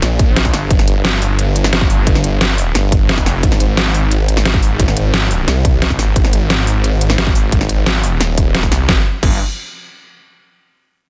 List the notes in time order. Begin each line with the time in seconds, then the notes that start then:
0.02 A#1, snare, closed hi-hat
0.19 kick, closed hi-hat
0.36 snare, closed hi-hat
0.45 kick, snare
0.53 G1, snare, open hi-hat
0.71 G1, kick, closed hi-hat
0.79 snare
0.88 G1, closed hi-hat
1.05 snare, closed hi-hat
1.22 open hi-hat
1.39 closed hi-hat
1.56 closed hi-hat
1.64 snare
1.73 snare, closed hi-hat
1.81 kick
1.90 open hi-hat
2.07 kick, closed hi-hat
2.15 snare
2.24 G1, closed hi-hat
2.41 snare, closed hi-hat
2.58 open hi-hat
2.75 G1, snare, closed hi-hat
2.92 kick, closed hi-hat
3.09 snare, closed hi-hat
3.18 kick, snare
3.26 F1, snare, open hi-hat
3.43 G#1, kick, closed hi-hat
3.52 snare
3.60 G#1, closed hi-hat
3.77 snare, closed hi-hat
3.94 open hi-hat
4.11 closed hi-hat
4.28 closed hi-hat
4.37 snare
4.45 snare, closed hi-hat
4.54 kick
4.62 open hi-hat
4.80 kick, closed hi-hat
4.88 snare
4.97 G#1, closed hi-hat
5.14 snare, closed hi-hat
5.31 open hi-hat
5.48 C2, snare, closed hi-hat
5.65 kick, closed hi-hat
5.82 snare, closed hi-hat
5.90 kick, snare
5.99 G#1, snare, open hi-hat
6.16 G#1, kick, closed hi-hat
6.25 snare
6.33 G#1, closed hi-hat
6.50 snare, closed hi-hat
6.67 open hi-hat
6.84 closed hi-hat
7.01 closed hi-hat
7.10 snare
7.18 snare, closed hi-hat
7.27 kick
7.35 open hi-hat
7.52 kick, closed hi-hat
7.61 snare
7.69 G#1, closed hi-hat
7.86 snare, closed hi-hat
8.03 open hi-hat
8.21 D#1, snare, closed hi-hat
8.38 kick, closed hi-hat
8.55 snare, closed hi-hat
8.63 kick, snare
8.72 C2, snare, open hi-hat
8.89 G1, kick, snare
9.23 G1, kick, crash